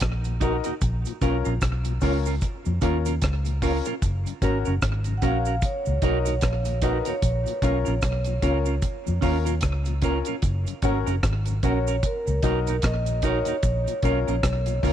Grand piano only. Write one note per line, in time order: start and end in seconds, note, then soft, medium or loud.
0.42 0.67 D#4 medium
0.42 0.67 F#4 medium
0.42 0.67 A#4 medium
1.22 1.47 C#4 medium
1.22 1.47 F4 medium
1.22 1.47 A#4 loud
2.02 2.27 C#4 medium
2.02 2.27 F4 medium
2.02 2.27 A#4 medium
2.82 3.07 C#4 medium
2.82 3.07 F4 medium
2.82 3.08 A#4 medium
3.62 3.87 C#4 medium
3.62 3.87 F4 medium
3.62 3.88 A#4 medium
4.42 4.67 C#4 medium
4.42 4.68 F#4 medium
4.42 4.68 A#4 loud
5.23 5.47 C#4 medium
5.23 5.48 F#4 medium
5.23 5.48 A#4 medium
6.03 6.27 D#4 medium
6.03 6.28 F#4 medium
6.03 6.28 A#4 loud
6.83 7.08 D#4 medium
6.83 7.08 F#4 medium
6.83 7.08 A#4 medium
7.63 7.88 C#4 medium
7.63 7.88 F4 medium
7.63 7.88 A#4 loud
8.42 8.67 C#4 medium
8.42 8.68 F4 medium
8.42 8.68 A#4 medium
9.22 9.48 C#4 medium
9.22 9.48 F4 medium
9.22 9.48 A#4 loud
10.03 10.28 C#4 medium
10.03 10.28 F4 medium
10.03 10.28 A#4 medium
10.84 11.08 C#4 medium
10.84 11.08 F#4 medium
10.84 11.09 A#4 loud
11.63 11.88 C#4 medium
11.63 11.89 F#4 medium
11.63 11.89 A#4 medium
12.43 12.68 D#4 medium
12.43 12.68 F#4 medium
12.43 12.69 A#4 medium
13.23 13.48 D#4 medium
13.23 13.48 F#4 medium
13.23 13.49 A#4 medium
14.04 14.28 C#4 medium
14.04 14.28 F4 medium
14.04 14.29 A#4 loud
14.83 14.93 C#4 medium
14.83 14.93 F4 medium
14.83 14.93 A#4 medium